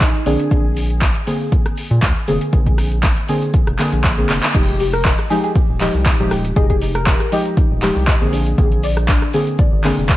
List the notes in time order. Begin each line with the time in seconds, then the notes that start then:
Already playing: F3 G#3 D#4 G4 G#4
0.00 A#1, kick, clap, closed hi-hat, shaker
0.14 closed hi-hat
0.26 A#1 D3 A#3 C4 D4 G#4, open hi-hat, shaker
0.40 closed hi-hat, shaker
0.51 A#1 D3 A#3 C4 G#4, kick, closed hi-hat, shaker
0.76 open hi-hat, shaker
0.90 closed hi-hat, shaker
1.01 kick, clap, closed hi-hat, shaker
1.15 closed hi-hat
1.27 D3 A#3 C4 G#4, open hi-hat, shaker
1.41 shaker
1.52 kick, closed hi-hat, shaker
1.66 cross-stick, closed hi-hat
1.77 open hi-hat, shaker
1.91 A#2, closed hi-hat, shaker
2.02 D2, kick, clap, closed hi-hat, shaker
2.16 closed hi-hat
2.28 F1 D3 A#3 C4 G#4, open hi-hat, shaker
2.41 closed hi-hat, shaker
2.53 A#1 D3 A#3 C4 G#4, kick, closed hi-hat, shaker
2.67 kick, closed hi-hat
2.78 cross-stick, open hi-hat, shaker
2.91 closed hi-hat, shaker
3.03 kick, clap, closed hi-hat, shaker
3.17 closed hi-hat
3.28 D3 A#3 C4 G#4, open hi-hat, shaker
3.42 closed hi-hat, shaker
3.54 kick, closed hi-hat, shaker
3.67 F1, cross-stick, closed hi-hat
3.79 D3 A#3 C4 G#4, clap, open hi-hat, shaker
3.92 A#1, closed hi-hat, shaker
4.04 kick, clap, closed hi-hat, shaker
4.18 D3 A#3 C4 G#4, closed hi-hat
4.29 F1, clap, open hi-hat, shaker
4.43 clap, closed hi-hat, shaker
4.55 F1 F3 G#3 D#4 G4, kick, closed hi-hat, crash, shaker
4.68 closed hi-hat
4.79 G4, open hi-hat, shaker
4.93 A#4, cross-stick, closed hi-hat, shaker
5.05 D#5, kick, clap, closed hi-hat, shaker
5.19 cross-stick, closed hi-hat
5.30 F3 G#3 D#4 G4 G#4, open hi-hat, shaker
5.44 G#4, closed hi-hat, shaker
5.55 G4, kick, closed hi-hat, shaker
5.69 D#1
5.80 F3 G#3 D#4 G4 D#5, clap, open hi-hat, shaker
5.94 C2, shaker
6.06 D#4, kick, clap, closed hi-hat, shaker
6.19 D#1 F3 G#3 D#4 G4
6.31 G4, cross-stick, open hi-hat, shaker
6.44 closed hi-hat, shaker
6.56 F1 F3 G#3 D#4 G4 G#4 D#5, kick, closed hi-hat, shaker
6.70 G#4, kick, closed hi-hat
6.81 D#4, open hi-hat, shaker
6.95 A#4, cross-stick, closed hi-hat, shaker
7.06 G4, kick, clap, closed hi-hat, shaker
7.20 cross-stick, closed hi-hat
7.32 F3 G#3 D#4 G4 D#5, open hi-hat, shaker
7.46 closed hi-hat, shaker
7.57 D#4, kick, closed hi-hat, shaker
7.71 D#1
7.82 F3 G#3 D#4 G4, clap, open hi-hat, shaker
7.96 C2, shaker
8.08 D#5, kick, clap, closed hi-hat, shaker
8.21 A#1 D3 A#3 C4 G#4
8.33 D4, open hi-hat, shaker
8.46 closed hi-hat, shaker
8.58 A#1 D3 A#3 C4 G#4, kick, closed hi-hat, shaker
8.72 closed hi-hat
8.83 D5, open hi-hat, shaker
8.97 cross-stick, closed hi-hat, shaker
9.08 D4, kick, clap, closed hi-hat, shaker
9.22 cross-stick, closed hi-hat
9.33 D3 A#3 C4 G#4, open hi-hat, shaker
9.47 closed hi-hat, shaker
9.58 D5, kick, closed hi-hat, shaker
9.72 G#1
9.84 D3 A#3 C4 D4 G#4, clap, open hi-hat, shaker
9.98 F1, shaker
10.09 G#4, kick, clap, closed hi-hat, shaker